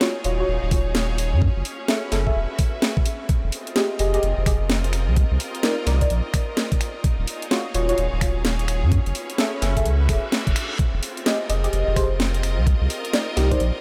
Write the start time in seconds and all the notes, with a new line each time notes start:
Already playing: D#4 F4 G#4 A#4 C#5 D#5
0.01 F4 F#4 C#5, snare
0.24 D#1 F4 F#4 C#5, open hi-hat
0.39 F4 F#4 C#5 F5
0.48 D#1
0.63 D#1
0.71 F4 F#4 C#5, kick, open hi-hat
0.95 snare
1.18 open hi-hat
1.33 F#2
1.42 C#4, kick
1.56 F#1
1.65 open hi-hat
1.85 F#4 G#4 A4 E5, snare
2.01 B4
2.12 F#1 G#4 A4 E5, snare, open hi-hat
2.27 G#4 A4 E5, kick
2.36 E1
2.59 kick, open hi-hat
2.82 snare
2.97 kick
3.06 open hi-hat
3.29 C4, kick, closed hi-hat
3.44 F1
3.50 D#5, open hi-hat
3.60 F4
3.67 closed hi-hat
3.76 G4 G#4 D#5, snare
3.84 A#4
3.99 F1 G4 G#4 D#5, open hi-hat
4.14 G4 G#4 D#5, closed hi-hat
4.23 F1, closed hi-hat
4.37 F1
4.46 G4 G#4 D#5, finger snap, kick, open hi-hat
4.70 snare
4.84 closed hi-hat
4.93 finger snap, open hi-hat
5.08 C2
5.16 kick, closed hi-hat
5.31 C2
5.40 open hi-hat
5.55 closed hi-hat
5.63 D#4 A#4 D5, snare
5.87 C2 D#4 A#4 D5, snare, open hi-hat
6.01 D#4 A#4 D5, kick, closed hi-hat
6.10 A#1, closed hi-hat
6.34 finger snap, kick, open hi-hat
6.57 snare
6.72 kick, closed hi-hat
6.81 finger snap, open hi-hat
7.04 D#4, kick, closed hi-hat
7.19 D#1
7.27 C#5, open hi-hat
7.35 G#4
7.42 closed hi-hat
7.51 F4 F#4 C#5, snare
7.74 D#1 F4 F#4 C#5, open hi-hat
7.89 F4 F#4 C#5 F5, closed hi-hat
7.98 D#1, closed hi-hat
8.13 D#1
8.21 F4 F#4 C#5, finger snap, kick, open hi-hat
8.45 snare
8.59 closed hi-hat
8.68 finger snap, open hi-hat
8.83 F#2
8.92 C#4, kick, closed hi-hat
9.06 F#1, closed hi-hat
9.15 B4, open hi-hat
9.30 closed hi-hat
9.37 F#4 G#4 A4 E5, snare
9.62 F#1 G#4 A4 E5, snare, open hi-hat
9.77 G#4 A4 E5, kick, closed hi-hat
9.85 C#2, closed hi-hat, reverse cymbal
10.09 E1 G#4 A4 E5, finger snap, kick, open hi-hat
10.32 snare
10.47 E1, kick, closed hi-hat
10.56 finger snap, open hi-hat
10.79 C4, kick, closed hi-hat
10.91 F1 F4
11.03 open hi-hat
11.17 closed hi-hat
11.26 G4 G#4 D#5, snare
11.40 A#4 D#5
11.49 F1 G4 G#4 D#5, open hi-hat
11.64 G4 G#4 D#5, closed hi-hat
11.73 F1, closed hi-hat
11.87 F1
11.96 G4 G#4 C5 D#5, finger snap, kick, open hi-hat
12.20 snare
12.34 closed hi-hat
12.43 finger snap, open hi-hat
12.58 C2
12.67 kick, closed hi-hat
12.81 C2
12.90 open hi-hat
13.05 closed hi-hat
13.13 D#4 A#4 D5, snare
13.37 C2 D#4 G4 A#4 D5, snare, open hi-hat
13.51 D#4 A#4 C5 D5, kick, closed hi-hat
13.60 A#1, closed hi-hat